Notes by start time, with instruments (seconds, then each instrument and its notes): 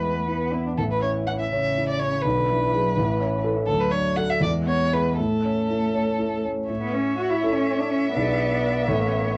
Already playing: grand piano E2 B3 E4, violin B4
0.02 cello G#3, grand piano B4
0.17 cello A3
0.28 cello B3, grand piano E4
0.53 grand piano B3, cello E4
0.67 cello D4
0.78 grand piano A1, cello E3, violin A4
0.92 violin B4
1.03 grand piano C#4, violin C#5
1.27 grand piano E4, violin F#5
1.40 violin E5
1.51 cello C#3, grand piano C#5
1.77 grand piano E4
1.89 violin D5
1.99 grand piano C#4, violin C#5
2.22 grand piano B1, cello D3, violin B4
2.49 cello E3, grand piano D4
2.73 cello F#3, grand piano E4 G#4
2.97 grand piano A1, cello E3
3.20 grand piano C#4
3.44 grand piano E4 A4
3.66 grand piano D2, cello F#3, violin A4
3.80 violin B4
3.91 grand piano D4, violin C#5
4.16 grand piano F#4 A4, violin F#5
4.30 violin E5
4.41 grand piano E2, cello G#3, violin D5
4.66 grand piano B3, violin C#5
4.92 grand piano E4 G#4, violin B4
5.18 grand piano A2, cello A3, violin A4
5.44 grand piano C#4
5.70 grand piano E4
5.94 grand piano C#5
6.19 grand piano E4
6.45 grand piano C#4
6.68 grand piano A2, cello A3, viola C#5, violin E5
6.81 cello B3
6.93 cello C#4
7.17 cello F#4
7.30 cello E4
7.43 grand piano C#4 E4 A4
7.54 cello C#4
7.79 cello D4
7.90 cello C#4
8.14 grand piano B1 D4 E4 G#4, cello B3, viola D5
8.88 grand piano A1 C#4 E4 A4, viola C#5